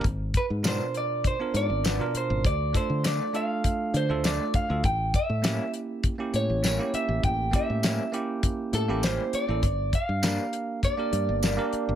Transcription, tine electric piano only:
X:1
M:4/4
L:1/16
Q:"Swing 16ths" 1/4=100
K:Aphr
V:1 name="Tine electric piano"
z4 [=B,,D^E_B]4- [=B,,DE_B] [=B,DE_B]4 [=B,,DE_B]3 | z2 [A,DFA]4 [A,DFA]4- [A,DFA] [A,DFA]4 [A,DFA] | z4 [B,^CEG]4- [B,CEG] [B,CEG]4 [B,CEG]3- | [B,^CEG]2 [B,CEG]4 [B,CEG]4- [B,CEG] [B,CEG]4 [B,CEA] |
z4 [B,DGB]4- [B,DGB] [B,DGB]4 [B,DGB]3 |]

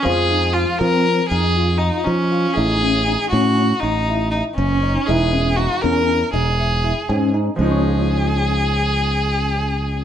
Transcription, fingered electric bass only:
X:1
M:5/8
L:1/8
Q:1/4=120
K:Db
V:1 name="Fingered electric bass" clef=bass
F,,3 F,2 | F,,3 F,2 | =A,,,3 =A,,2 | =A,,,3 G,,,2 |
=E,,,3 =E,,2 | =E,,,3 ^G,,2 | D,,4- D,,- | D,,4- D,, |]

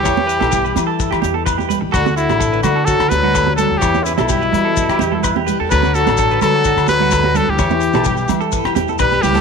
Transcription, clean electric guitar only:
X:1
M:4/4
L:1/16
Q:"Swing 16ths" 1/4=127
K:Edor
V:1 name="Clean electric guitar"
c2 B A G B2 A2 G G A B G B z | A F F2 A B2 A F2 z F A z A z | c2 B A G B2 A2 G G A B G B A | A F F2 A B2 F F2 z F A F A z |
c2 z A G z2 A2 G G A B G B A |]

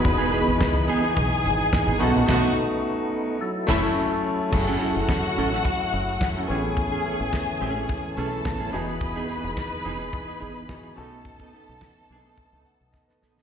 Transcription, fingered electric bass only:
X:1
M:4/4
L:1/16
Q:1/4=107
K:F#dor
V:1 name="Fingered electric bass" clef=bass
E,,,3 G,,, C,,2 z2 B,,,2 G,,,2 z G,,, B,,, ^A,,, | B,,,2 z8 F,,,2 z4 | F,,,2 z F,,, z2 A,,,2 z2 F,,,2 z2 A,,,2- | A,,,2 z A,,, z2 A,,,2 z2 B,,,2 A,,,2 E,,,2- |
E,,,2 z E,,, z2 E,,,2 z2 G,,,2 z2 B,,,2- | B,,,2 z B,,, z2 B,,,2 z C,, z B,,, z2 ^A,,,2 |]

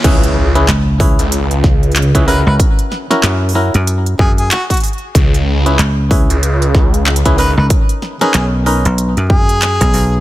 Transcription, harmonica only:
X:1
M:4/4
L:1/16
Q:"Swing 16ths" 1/4=94
K:C#dor
V:1 name="Harmonica"
z12 z2 B B | z8 z2 G G F F z2 | z12 z2 B B | z3 G z6 G6 |]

